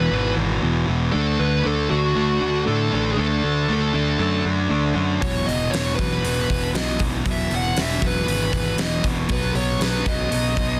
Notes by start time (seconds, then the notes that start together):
Already playing: B2 E3 B4
0.11 G#1 E2 B2 E3
0.36 G#1 E2 B2
0.61 E1 E2 B2 E3
0.87 E1 E2 B2 E3
1.12 D2 D3 A3 D4 A4
1.38 D2 D3 A3 B4
1.64 D2 D3 A3 D4 A4
1.90 D2 D3 A3 D4 F#4
2.15 D2 D3 A3 D4
2.41 D2 D3 A3
2.65 A2 D3 A3 D4 A4
2.90 A1 D3 A3 D4
2.95 A4
3.12 G#4
3.16 D2 D3 A3 D4 A4
3.43 D2 D3 A3
3.69 D2 D3 A3 D4
3.73 A4
3.93 D2 D3 A3 D4
4.19 F#2 D3 A3 D4
4.44 F#2 D3 A3
4.69 D2 D3 A3 D4
4.95 F#2 D3 A3 D4
5.21 E1 E2 B2 E3 F#3 C#5, kick, open hi-hat
5.46 E1 E2 B2 D#5, open hi-hat
5.71 E1 E2 B2 E3 C#5, open hi-hat
5.75 snare
5.95 E1 E2 B2 E3 F#3 B4, kick
6.00 open hi-hat
6.23 E1 E2 B2 E3, open hi-hat
6.47 E1 E2 B2, kick, open hi-hat
6.73 B1 E2 B2 E3 F#3 D#5, snare, open hi-hat
6.99 B1 E2 B2 E3, kick, open hi-hat
7.25 E2 B2 E3 F#3, kick, open hi-hat
7.31 E5
7.50 E1 E2 B2, open hi-hat
7.55 F#5
7.76 E1 E2 B2 E3, snare, open hi-hat
7.81 E5
8.00 E1 E2 B2 E3 F#3, kick, open hi-hat
8.06 B4
8.25 G#1 E2 B2 E3, open hi-hat
8.52 G#1 E2 B2, kick, open hi-hat
8.78 E1 E2 B2 E3 F#3 D#5, snare, open hi-hat
9.03 E1 E2 B2 E3, kick, open hi-hat
9.28 B1 B2 F#3 B3, kick, open hi-hat
9.32 B4
9.53 B1 B2 F#3 C#5, open hi-hat
9.79 B1 B2 F#3 B3 B4, snare, open hi-hat
10.04 B1 B2 F#3 B3, kick, open hi-hat
10.08 D#5
10.30 B1 B2 F#3 B3, open hi-hat
10.55 B1 B2 F#3, kick, open hi-hat